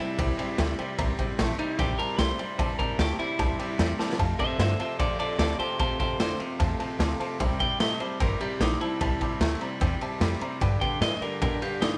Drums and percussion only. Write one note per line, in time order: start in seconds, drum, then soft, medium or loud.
0.18 kick loud
0.18 ride medium
0.39 ride medium
0.58 snare loud
0.58 ride medium
0.79 ride medium
0.98 kick loud
0.98 ride medium
1.19 kick medium
1.19 ride medium
1.39 snare loud
1.39 ride medium
1.59 ride medium
1.79 kick loud
1.79 snare soft
1.79 ride medium
1.99 ride medium
2.19 snare loud
2.19 ride medium
2.39 ride medium
2.59 kick loud
2.59 ride medium
2.79 kick medium
2.79 ride medium
2.99 snare loud
2.99 ride medium
3.19 ride medium
3.39 kick loud
3.39 snare soft
3.39 ride medium
3.59 ride medium
3.79 snare loud
3.79 ride medium
3.99 snare medium
4.13 snare medium
4.19 kick loud
4.19 ride medium
4.39 kick medium
4.39 ride medium
4.60 snare loud
4.60 ride medium
4.80 ride medium
5.00 kick loud
5.00 ride medium
5.20 ride medium
5.39 snare loud
5.39 ride medium
5.60 ride medium
5.79 kick loud
5.79 ride medium
6.00 kick medium
6.00 ride medium
6.20 snare loud
6.20 ride medium
6.40 ride medium
6.60 kick loud
6.60 snare soft
6.60 ride medium
6.80 ride medium
7.00 snare loud
7.00 ride medium
7.20 ride medium
7.40 kick loud
7.40 ride medium
7.60 kick medium
7.60 ride medium
7.80 snare loud
7.80 ride medium
8.00 ride medium
8.20 kick loud
8.20 snare soft
8.20 ride loud
8.41 ride medium
8.61 snare loud
8.61 ride medium
8.81 ride medium
9.01 kick loud
9.01 ride medium
9.21 kick medium
9.21 ride medium
9.41 snare loud
9.41 ride medium
9.61 ride medium
9.81 kick loud
9.81 snare soft
9.81 ride medium
10.01 ride medium
10.21 snare loud
10.21 ride medium
10.41 ride medium
10.61 kick loud
10.61 ride medium
10.81 kick medium
10.81 ride medium
11.02 snare loud
11.02 ride loud
11.22 ride medium
11.42 kick loud
11.42 ride loud
11.62 ride medium
11.82 snare loud
11.82 ride medium